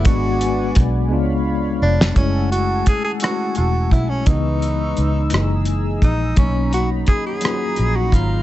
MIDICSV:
0, 0, Header, 1, 7, 480
1, 0, Start_track
1, 0, Tempo, 701754
1, 36, Time_signature, 6, 3, 24, 8
1, 5763, End_track
2, 0, Start_track
2, 0, Title_t, "Analog synth pad"
2, 0, Program_c, 0, 89
2, 0, Note_on_c, 0, 74, 88
2, 0, Note_on_c, 0, 78, 71
2, 35, Note_on_c, 0, 71, 79
2, 35, Note_on_c, 0, 80, 66
2, 738, Note_off_c, 0, 78, 0
2, 748, Note_off_c, 0, 71, 0
2, 748, Note_off_c, 0, 80, 0
2, 753, Note_on_c, 0, 77, 69
2, 753, Note_on_c, 0, 83, 67
2, 754, Note_on_c, 0, 73, 78
2, 1452, Note_off_c, 0, 74, 0
2, 1467, Note_off_c, 0, 83, 0
2, 1468, Note_off_c, 0, 73, 0
2, 1468, Note_off_c, 0, 77, 0
2, 1469, Note_on_c, 0, 80, 70
2, 1469, Note_on_c, 0, 81, 66
2, 1472, Note_on_c, 0, 78, 65
2, 1473, Note_on_c, 0, 88, 74
2, 2898, Note_off_c, 0, 80, 0
2, 2898, Note_off_c, 0, 81, 0
2, 2900, Note_off_c, 0, 78, 0
2, 2900, Note_off_c, 0, 88, 0
2, 2919, Note_on_c, 0, 88, 67
2, 2920, Note_on_c, 0, 71, 59
2, 2923, Note_on_c, 0, 63, 64
2, 2923, Note_on_c, 0, 85, 60
2, 3631, Note_off_c, 0, 71, 0
2, 3633, Note_off_c, 0, 85, 0
2, 3640, Note_on_c, 0, 82, 67
2, 3641, Note_on_c, 0, 68, 67
2, 4343, Note_off_c, 0, 88, 0
2, 4351, Note_off_c, 0, 68, 0
2, 4360, Note_on_c, 0, 54, 68
2, 4361, Note_on_c, 0, 83, 79
2, 5763, Note_off_c, 0, 54, 0
2, 5763, Note_off_c, 0, 63, 0
2, 5763, Note_off_c, 0, 82, 0
2, 5763, Note_off_c, 0, 83, 0
2, 5763, End_track
3, 0, Start_track
3, 0, Title_t, "Tenor saxophone"
3, 0, Program_c, 1, 66
3, 42, Note_on_c, 1, 66, 77
3, 552, Note_off_c, 1, 66, 0
3, 1248, Note_on_c, 1, 62, 80
3, 1466, Note_off_c, 1, 62, 0
3, 1484, Note_on_c, 1, 61, 74
3, 1704, Note_off_c, 1, 61, 0
3, 1723, Note_on_c, 1, 66, 81
3, 1943, Note_off_c, 1, 66, 0
3, 1970, Note_on_c, 1, 68, 82
3, 2075, Note_off_c, 1, 68, 0
3, 2083, Note_on_c, 1, 68, 70
3, 2135, Note_off_c, 1, 68, 0
3, 2206, Note_on_c, 1, 66, 81
3, 2425, Note_off_c, 1, 66, 0
3, 2442, Note_on_c, 1, 66, 76
3, 2663, Note_off_c, 1, 66, 0
3, 2682, Note_on_c, 1, 64, 72
3, 2800, Note_on_c, 1, 61, 64
3, 2811, Note_off_c, 1, 64, 0
3, 2920, Note_on_c, 1, 63, 72
3, 2930, Note_off_c, 1, 61, 0
3, 3878, Note_off_c, 1, 63, 0
3, 4126, Note_on_c, 1, 63, 64
3, 4345, Note_off_c, 1, 63, 0
3, 4364, Note_on_c, 1, 61, 74
3, 4584, Note_off_c, 1, 61, 0
3, 4611, Note_on_c, 1, 66, 78
3, 4715, Note_off_c, 1, 66, 0
3, 4842, Note_on_c, 1, 68, 83
3, 4951, Note_off_c, 1, 68, 0
3, 4969, Note_on_c, 1, 68, 73
3, 5444, Note_on_c, 1, 66, 79
3, 5454, Note_off_c, 1, 68, 0
3, 5568, Note_on_c, 1, 65, 71
3, 5579, Note_off_c, 1, 66, 0
3, 5763, Note_off_c, 1, 65, 0
3, 5763, End_track
4, 0, Start_track
4, 0, Title_t, "Tine electric piano"
4, 0, Program_c, 2, 4
4, 0, Control_c, 2, 64, 127
4, 25, Note_on_c, 2, 56, 79
4, 36, Note_on_c, 2, 59, 76
4, 44, Control_c, 2, 64, 0
4, 44, Note_on_c, 2, 62, 76
4, 54, Note_on_c, 2, 66, 84
4, 158, Control_c, 2, 64, 127
4, 636, Note_off_c, 2, 56, 0
4, 642, Note_off_c, 2, 59, 0
4, 646, Note_off_c, 2, 62, 0
4, 651, Note_off_c, 2, 66, 0
4, 743, Note_on_c, 2, 56, 65
4, 755, Note_on_c, 2, 59, 66
4, 762, Note_on_c, 2, 62, 67
4, 765, Control_c, 2, 64, 0
4, 774, Note_on_c, 2, 65, 69
4, 892, Control_c, 2, 64, 127
4, 1355, Note_off_c, 2, 56, 0
4, 1361, Note_off_c, 2, 59, 0
4, 1365, Note_off_c, 2, 62, 0
4, 1371, Note_off_c, 2, 65, 0
4, 1468, Note_on_c, 2, 56, 65
4, 1477, Note_on_c, 2, 57, 55
4, 1485, Control_c, 2, 64, 0
4, 1486, Note_on_c, 2, 61, 56
4, 1497, Note_on_c, 2, 64, 67
4, 1593, Control_c, 2, 64, 127
4, 2078, Note_off_c, 2, 56, 0
4, 2082, Note_off_c, 2, 57, 0
4, 2087, Note_off_c, 2, 61, 0
4, 2092, Note_off_c, 2, 64, 0
4, 2184, Note_on_c, 2, 56, 43
4, 2196, Note_on_c, 2, 57, 42
4, 2203, Note_on_c, 2, 61, 42
4, 2215, Note_on_c, 2, 64, 42
4, 2250, Note_off_c, 2, 64, 0
4, 2259, Note_on_c, 2, 66, 47
4, 2796, Note_off_c, 2, 56, 0
4, 2802, Note_off_c, 2, 57, 0
4, 2805, Note_off_c, 2, 61, 0
4, 2833, Note_off_c, 2, 66, 0
4, 2913, Note_on_c, 2, 52, 62
4, 2924, Note_on_c, 2, 56, 57
4, 2926, Control_c, 2, 64, 0
4, 2930, Note_on_c, 2, 59, 60
4, 2942, Note_on_c, 2, 63, 73
4, 3032, Control_c, 2, 64, 127
4, 3520, Note_off_c, 2, 52, 0
4, 3526, Note_off_c, 2, 56, 0
4, 3529, Note_off_c, 2, 59, 0
4, 3535, Note_off_c, 2, 63, 0
4, 3630, Note_on_c, 2, 52, 58
4, 3638, Note_on_c, 2, 56, 46
4, 3646, Control_c, 2, 64, 0
4, 3647, Note_on_c, 2, 58, 47
4, 3659, Note_on_c, 2, 63, 68
4, 3757, Control_c, 2, 64, 127
4, 4239, Note_off_c, 2, 52, 0
4, 4243, Note_off_c, 2, 56, 0
4, 4247, Note_off_c, 2, 58, 0
4, 4253, Note_off_c, 2, 63, 0
4, 4352, Note_on_c, 2, 54, 65
4, 4364, Note_on_c, 2, 58, 59
4, 4366, Control_c, 2, 64, 0
4, 4371, Note_on_c, 2, 61, 60
4, 4382, Note_on_c, 2, 63, 76
4, 4473, Control_c, 2, 64, 127
4, 4960, Note_off_c, 2, 54, 0
4, 4966, Note_off_c, 2, 58, 0
4, 4969, Note_off_c, 2, 61, 0
4, 4975, Note_off_c, 2, 63, 0
4, 5070, Note_on_c, 2, 54, 48
4, 5080, Note_on_c, 2, 58, 43
4, 5088, Note_on_c, 2, 61, 42
4, 5101, Note_on_c, 2, 65, 41
4, 5133, Note_off_c, 2, 65, 0
4, 5143, Note_on_c, 2, 66, 52
4, 5679, Note_off_c, 2, 54, 0
4, 5684, Note_off_c, 2, 58, 0
4, 5688, Note_off_c, 2, 61, 0
4, 5715, Note_off_c, 2, 66, 0
4, 5763, End_track
5, 0, Start_track
5, 0, Title_t, "Fingered electric bass"
5, 0, Program_c, 3, 33
5, 42, Note_on_c, 3, 32, 113
5, 492, Note_off_c, 3, 32, 0
5, 525, Note_on_c, 3, 35, 92
5, 765, Note_off_c, 3, 35, 0
5, 765, Note_on_c, 3, 37, 105
5, 1244, Note_on_c, 3, 29, 91
5, 1254, Note_off_c, 3, 37, 0
5, 1456, Note_off_c, 3, 29, 0
5, 1483, Note_on_c, 3, 30, 83
5, 1932, Note_off_c, 3, 30, 0
5, 2448, Note_on_c, 3, 28, 70
5, 2683, Note_off_c, 3, 28, 0
5, 2683, Note_on_c, 3, 35, 69
5, 2896, Note_off_c, 3, 35, 0
5, 2922, Note_on_c, 3, 37, 86
5, 3372, Note_off_c, 3, 37, 0
5, 3406, Note_on_c, 3, 37, 61
5, 3617, Note_off_c, 3, 37, 0
5, 3642, Note_on_c, 3, 30, 81
5, 4092, Note_off_c, 3, 30, 0
5, 4120, Note_on_c, 3, 34, 71
5, 4334, Note_off_c, 3, 34, 0
5, 4363, Note_on_c, 3, 35, 91
5, 4812, Note_off_c, 3, 35, 0
5, 5327, Note_on_c, 3, 34, 68
5, 5538, Note_off_c, 3, 34, 0
5, 5562, Note_on_c, 3, 32, 69
5, 5763, Note_off_c, 3, 32, 0
5, 5763, End_track
6, 0, Start_track
6, 0, Title_t, "Muted fingered electric bass strokes"
6, 1965, Note_on_c, 9, 29, 36
6, 2034, Note_off_c, 9, 29, 0
6, 4846, Note_on_c, 9, 29, 34
6, 4914, Note_off_c, 9, 29, 0
6, 5763, End_track
7, 0, Start_track
7, 0, Title_t, "Drums"
7, 32, Note_on_c, 9, 42, 68
7, 37, Note_on_c, 9, 36, 120
7, 101, Note_off_c, 9, 42, 0
7, 105, Note_off_c, 9, 36, 0
7, 280, Note_on_c, 9, 42, 55
7, 348, Note_off_c, 9, 42, 0
7, 515, Note_on_c, 9, 42, 81
7, 522, Note_on_c, 9, 36, 87
7, 583, Note_off_c, 9, 42, 0
7, 590, Note_off_c, 9, 36, 0
7, 1376, Note_on_c, 9, 38, 99
7, 1444, Note_off_c, 9, 38, 0
7, 1477, Note_on_c, 9, 42, 55
7, 1478, Note_on_c, 9, 36, 89
7, 1546, Note_off_c, 9, 36, 0
7, 1546, Note_off_c, 9, 42, 0
7, 1726, Note_on_c, 9, 42, 49
7, 1794, Note_off_c, 9, 42, 0
7, 1957, Note_on_c, 9, 42, 49
7, 1961, Note_on_c, 9, 36, 63
7, 2025, Note_off_c, 9, 42, 0
7, 2030, Note_off_c, 9, 36, 0
7, 2188, Note_on_c, 9, 42, 67
7, 2216, Note_on_c, 9, 37, 84
7, 2256, Note_off_c, 9, 42, 0
7, 2285, Note_off_c, 9, 37, 0
7, 2428, Note_on_c, 9, 42, 44
7, 2496, Note_off_c, 9, 42, 0
7, 2677, Note_on_c, 9, 36, 61
7, 2686, Note_on_c, 9, 42, 34
7, 2746, Note_off_c, 9, 36, 0
7, 2754, Note_off_c, 9, 42, 0
7, 2915, Note_on_c, 9, 42, 54
7, 2918, Note_on_c, 9, 36, 96
7, 2983, Note_off_c, 9, 42, 0
7, 2986, Note_off_c, 9, 36, 0
7, 3162, Note_on_c, 9, 42, 47
7, 3230, Note_off_c, 9, 42, 0
7, 3397, Note_on_c, 9, 42, 44
7, 3466, Note_off_c, 9, 42, 0
7, 3626, Note_on_c, 9, 42, 73
7, 3654, Note_on_c, 9, 37, 82
7, 3694, Note_off_c, 9, 42, 0
7, 3723, Note_off_c, 9, 37, 0
7, 3868, Note_on_c, 9, 42, 48
7, 3936, Note_off_c, 9, 42, 0
7, 4117, Note_on_c, 9, 36, 61
7, 4123, Note_on_c, 9, 42, 34
7, 4185, Note_off_c, 9, 36, 0
7, 4191, Note_off_c, 9, 42, 0
7, 4353, Note_on_c, 9, 42, 56
7, 4357, Note_on_c, 9, 36, 85
7, 4422, Note_off_c, 9, 42, 0
7, 4426, Note_off_c, 9, 36, 0
7, 4601, Note_on_c, 9, 42, 48
7, 4669, Note_off_c, 9, 42, 0
7, 4832, Note_on_c, 9, 42, 44
7, 4841, Note_on_c, 9, 36, 67
7, 4901, Note_off_c, 9, 42, 0
7, 4909, Note_off_c, 9, 36, 0
7, 5067, Note_on_c, 9, 42, 66
7, 5096, Note_on_c, 9, 37, 89
7, 5136, Note_off_c, 9, 42, 0
7, 5165, Note_off_c, 9, 37, 0
7, 5310, Note_on_c, 9, 42, 46
7, 5378, Note_off_c, 9, 42, 0
7, 5556, Note_on_c, 9, 36, 55
7, 5564, Note_on_c, 9, 42, 36
7, 5624, Note_off_c, 9, 36, 0
7, 5633, Note_off_c, 9, 42, 0
7, 5763, End_track
0, 0, End_of_file